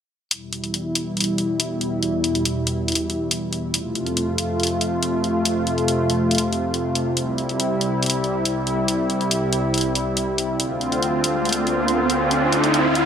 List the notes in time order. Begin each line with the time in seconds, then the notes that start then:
0.31 E2 B2 G3 E4, closed hi-hat
0.53 closed hi-hat
0.64 closed hi-hat
0.74 closed hi-hat
0.95 closed hi-hat
1.17 closed hi-hat
1.20 closed hi-hat
1.24 closed hi-hat
1.38 closed hi-hat
1.60 closed hi-hat
1.81 closed hi-hat
2.03 closed hi-hat
2.24 closed hi-hat
2.35 closed hi-hat
2.45 closed hi-hat
2.67 closed hi-hat
2.88 closed hi-hat
2.92 closed hi-hat
2.95 closed hi-hat
3.10 closed hi-hat
3.31 closed hi-hat
3.53 closed hi-hat
3.74 F2 C3 A3 F4, closed hi-hat
3.95 closed hi-hat
4.06 closed hi-hat
4.17 closed hi-hat
4.38 closed hi-hat
4.60 closed hi-hat
4.63 closed hi-hat
4.67 closed hi-hat
4.81 closed hi-hat
5.03 closed hi-hat
5.24 closed hi-hat
5.45 closed hi-hat
5.67 closed hi-hat
5.78 closed hi-hat
5.88 closed hi-hat
6.10 closed hi-hat
6.31 closed hi-hat
6.35 closed hi-hat
6.38 closed hi-hat
6.53 closed hi-hat
6.74 closed hi-hat
6.95 closed hi-hat
7.17 C2 G3 E4, closed hi-hat
7.38 closed hi-hat
7.49 closed hi-hat
7.60 closed hi-hat
7.81 closed hi-hat
8.03 closed hi-hat
8.06 closed hi-hat
8.10 closed hi-hat
8.24 closed hi-hat
8.45 closed hi-hat
8.67 closed hi-hat
8.88 closed hi-hat
9.10 closed hi-hat
9.21 closed hi-hat
9.31 closed hi-hat
9.53 closed hi-hat
9.74 closed hi-hat
9.78 closed hi-hat
9.81 closed hi-hat
9.95 closed hi-hat
10.17 closed hi-hat
10.38 closed hi-hat
10.60 D2 D3 C4 F4, closed hi-hat, riser
10.81 closed hi-hat
10.92 closed hi-hat
11.03 closed hi-hat
11.24 closed hi-hat
11.45 closed hi-hat
11.49 closed hi-hat
11.53 closed hi-hat
11.67 closed hi-hat
11.88 closed hi-hat
12.10 closed hi-hat
12.31 closed hi-hat
12.52 closed hi-hat
12.64 closed hi-hat
12.74 closed hi-hat
12.95 closed hi-hat